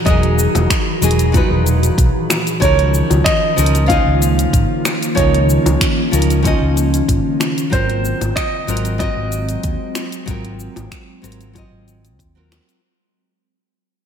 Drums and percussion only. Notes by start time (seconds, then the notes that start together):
0.06 kick, closed hi-hat, shaker
0.23 closed hi-hat
0.39 shaker
0.55 closed hi-hat, high bongo, shaker
0.70 finger snap, kick, closed hi-hat, shaker
1.02 closed hi-hat, shaker
1.11 closed hi-hat
1.19 closed hi-hat, shaker
1.34 kick, closed hi-hat, high bongo, shaker
1.66 closed hi-hat, shaker
1.83 closed hi-hat, shaker
1.98 kick, closed hi-hat, shaker
2.30 finger snap, closed hi-hat, high bongo, shaker
2.47 closed hi-hat, shaker
2.62 kick, closed hi-hat, shaker
2.79 closed hi-hat
2.94 shaker
3.10 closed hi-hat, high bongo, shaker
3.26 finger snap, kick, closed hi-hat, shaker
3.58 closed hi-hat, shaker
3.66 closed hi-hat
3.75 closed hi-hat, shaker
3.89 kick, closed hi-hat, high bongo, shaker
4.22 closed hi-hat, shaker
4.39 closed hi-hat, shaker
4.53 kick, closed hi-hat, shaker
4.85 finger snap, high bongo, shaker
5.03 closed hi-hat, shaker
5.17 kick, closed hi-hat, shaker
5.34 closed hi-hat
5.50 shaker
5.66 closed hi-hat, high bongo, shaker
5.81 finger snap, kick, closed hi-hat, shaker
6.13 closed hi-hat, shaker
6.22 closed hi-hat
6.30 closed hi-hat, shaker
6.45 kick, closed hi-hat, high bongo, shaker
6.77 closed hi-hat, shaker
6.94 closed hi-hat, shaker
7.09 kick, closed hi-hat, shaker
7.40 finger snap, high bongo, shaker
7.58 closed hi-hat, shaker
7.72 kick, closed hi-hat, shaker
7.90 closed hi-hat
8.05 shaker
8.21 closed hi-hat, high bongo, shaker
8.36 finger snap, kick, closed hi-hat, shaker
8.68 closed hi-hat, shaker
8.77 closed hi-hat
8.85 closed hi-hat, shaker
9.00 kick, closed hi-hat, high bongo, shaker
9.32 closed hi-hat, shaker
9.49 closed hi-hat, shaker
9.63 kick, closed hi-hat, shaker
9.95 finger snap, high bongo, shaker
10.12 closed hi-hat, shaker
10.28 kick, closed hi-hat, shaker
10.45 closed hi-hat
10.60 shaker
10.76 closed hi-hat, high bongo, shaker
10.92 finger snap, kick, closed hi-hat, shaker
11.24 closed hi-hat, shaker
11.32 closed hi-hat
11.41 closed hi-hat, shaker
11.55 kick, closed hi-hat, high bongo, shaker
11.88 closed hi-hat, shaker
12.05 closed hi-hat, shaker
12.19 kick, closed hi-hat, shaker
12.52 finger snap, closed hi-hat, high bongo, shaker
12.69 closed hi-hat, shaker